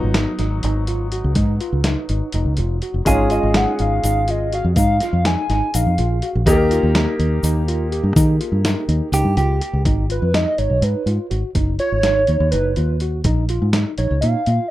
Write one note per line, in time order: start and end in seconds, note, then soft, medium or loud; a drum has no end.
0.00 0.25 G#1 medium
0.00 3.02 F#3 medium
0.00 3.02 B3 medium
0.00 3.03 D#4 medium
0.14 0.34 D#4 medium
0.14 snare loud
0.14 closed hi-hat medium
0.39 0.61 G#1 medium
0.39 0.58 D#4 medium
0.39 snare soft
0.39 closed hi-hat soft
0.63 1.21 G#1 medium
0.63 0.83 D#4 medium
0.63 closed hi-hat medium
0.87 1.07 F4 medium
0.87 closed hi-hat medium
1.12 1.31 F#4 medium
1.12 closed hi-hat medium
1.24 1.35 C#2 medium
1.35 1.58 G#2 medium
1.35 1.55 D#4 medium
1.35 kick loud
1.35 closed hi-hat medium
1.61 1.79 F4 medium
1.61 closed hi-hat medium
1.73 1.95 C#2 medium
1.84 2.04 D#4 medium
1.84 snare medium
1.84 closed hi-hat medium
2.09 2.21 G#1 medium
2.09 2.28 D#4 medium
2.09 closed hi-hat medium
2.32 2.45 F1 medium
2.32 2.53 D#4 medium
2.32 closed hi-hat medium
2.45 2.57 C#2 medium
2.57 2.80 F1 medium
2.57 2.77 F4 medium
2.57 closed hi-hat medium
2.82 3.01 F#4 medium
2.82 closed hi-hat medium
2.94 3.05 F1 medium
3.05 3.39 G#1 medium
3.05 6.42 G#3 medium
3.05 6.43 C#4 soft
3.05 3.26 D#4 medium
3.05 6.43 F4 medium
3.05 6.57 G#4 medium
3.05 3.30 C#5 medium
3.05 kick loud
3.05 closed hi-hat medium
3.05 shaker medium
3.30 3.50 F4 medium
3.30 3.58 D#5 medium
3.30 closed hi-hat medium
3.30 shaker soft
3.43 3.65 G#1 medium
3.54 3.74 D#4 medium
3.54 3.80 F#5 medium
3.54 snare loud
3.54 closed hi-hat medium
3.79 4.02 G#1 medium
3.79 3.98 D#4 medium
3.79 4.32 F5 loud
3.79 closed hi-hat soft
4.04 4.61 G#1 medium
4.04 4.23 D#4 medium
4.04 closed hi-hat medium
4.04 shaker medium
4.28 4.47 F4 medium
4.28 4.54 D#5 medium
4.28 closed hi-hat medium
4.53 4.72 F#4 medium
4.53 4.65 F5 medium
4.53 closed hi-hat medium
4.64 4.76 F2 medium
4.76 4.99 G#2 medium
4.76 4.96 D#4 medium
4.76 5.27 F5 loud
4.76 kick loud
4.76 closed hi-hat medium
4.76 shaker medium
5.00 5.21 F4 medium
5.00 snare soft
5.00 closed hi-hat medium
5.00 shaker soft
5.13 5.35 F2 medium
5.25 5.45 D#4 medium
5.25 5.76 G#5 loud
5.25 snare medium
5.25 closed hi-hat medium
5.50 5.61 G#1 medium
5.50 5.69 D#4 medium
5.50 snare soft
5.50 closed hi-hat medium
5.74 5.85 A#1 medium
5.74 5.93 D#4 medium
5.74 6.29 F5 loud
5.74 closed hi-hat medium
5.74 shaker medium
5.87 5.98 F2 medium
5.98 6.21 A#1 medium
5.98 6.17 F4 medium
5.98 closed hi-hat medium
6.22 6.41 F#4 medium
6.22 closed hi-hat medium
6.35 6.46 A#1 medium
6.46 6.80 D#2 medium
6.46 9.82 A#3 medium
6.46 9.82 D#4 medium
6.46 6.66 D#4 medium
6.46 9.83 G4 medium
6.46 8.22 A#4 loud
6.46 kick loud
6.46 closed hi-hat medium
6.46 shaker medium
6.71 6.90 F4 medium
6.71 closed hi-hat medium
6.71 shaker soft
6.83 7.05 D#2 medium
6.95 7.14 D#4 medium
6.95 snare loud
6.95 closed hi-hat medium
7.19 7.42 D#2 medium
7.19 7.38 D#4 medium
7.19 closed hi-hat soft
7.43 8.00 D#2 medium
7.43 7.62 D#4 medium
7.43 closed hi-hat medium
7.43 shaker medium
7.68 7.87 F4 medium
7.68 closed hi-hat medium
7.92 8.10 G4 medium
7.92 closed hi-hat medium
8.03 8.15 G2 medium
8.16 8.38 D#3 medium
8.16 8.35 D#4 medium
8.16 kick loud
8.16 closed hi-hat medium
8.16 shaker medium
8.22 9.22 G#4 loud
8.41 8.59 F4 medium
8.41 closed hi-hat medium
8.52 8.74 G2 medium
8.65 8.83 D#4 medium
8.65 snare loud
8.65 closed hi-hat medium
8.65 shaker soft
8.88 9.00 D#2 medium
8.88 9.07 D#4 medium
8.88 closed hi-hat soft
9.12 9.24 C#2 medium
9.12 9.32 D#4 medium
9.12 9.36 G4 medium
9.12 closed hi-hat medium
9.12 shaker medium
9.25 9.36 G2 medium
9.37 9.59 C#2 medium
9.37 9.56 F4 medium
9.37 9.83 G4 medium
9.37 closed hi-hat medium
9.37 shaker soft
9.61 9.80 G4 medium
9.61 closed hi-hat medium
9.73 9.85 C#2 medium
9.85 10.19 G#1 medium
9.85 10.05 D#4 medium
9.85 kick loud
9.85 closed hi-hat medium
10.10 10.28 F4 medium
10.10 10.34 B4 medium
10.10 closed hi-hat medium
10.22 10.44 F2 medium
10.34 10.53 D#4 medium
10.34 10.60 D#5 loud
10.34 snare medium
10.34 closed hi-hat medium
10.58 10.69 G#1 medium
10.58 10.77 D#4 medium
10.58 10.85 C#5 medium
10.58 closed hi-hat soft
10.70 10.81 B1 medium
10.82 10.94 G#2 medium
10.82 11.02 D#4 medium
10.82 11.08 B4 medium
10.82 closed hi-hat medium
11.06 11.18 G#2 medium
11.06 11.26 F4 medium
11.06 closed hi-hat medium
11.31 11.42 G#1 medium
11.31 11.49 F#4 medium
11.31 closed hi-hat soft
11.55 11.78 F#1 medium
11.55 11.74 D#4 medium
11.55 kick loud
11.55 closed hi-hat medium
11.79 11.98 F4 medium
11.79 12.49 C#5 loud
11.79 closed hi-hat soft
11.92 12.25 G#1 medium
12.03 12.23 D#4 medium
12.03 snare medium
12.03 closed hi-hat medium
12.27 12.40 D#2 medium
12.27 12.48 D#4 medium
12.27 closed hi-hat soft
12.40 12.52 D#2 medium
12.51 12.75 F#1 medium
12.51 12.71 D#4 medium
12.51 12.75 B4 medium
12.51 closed hi-hat medium
12.76 13.22 D#2 medium
12.76 12.96 F4 medium
12.76 closed hi-hat medium
13.00 13.20 F#4 medium
13.00 closed hi-hat medium
13.24 13.58 A#1 medium
13.24 13.44 D#4 medium
13.24 kick loud
13.24 closed hi-hat medium
13.49 13.68 F4 medium
13.49 closed hi-hat medium
13.62 13.84 G#2 medium
13.73 13.93 D#4 medium
13.73 snare medium
13.73 closed hi-hat medium
13.98 14.09 A#1 medium
13.98 14.17 D#4 medium
13.98 14.21 C#5 loud
13.98 closed hi-hat medium
14.11 14.22 C#2 medium
14.21 14.34 A#2 medium
14.21 14.41 D#4 medium
14.21 14.70 F5 loud
14.21 closed hi-hat medium
14.46 14.58 A#2 medium
14.46 14.65 F4 medium
14.46 closed hi-hat medium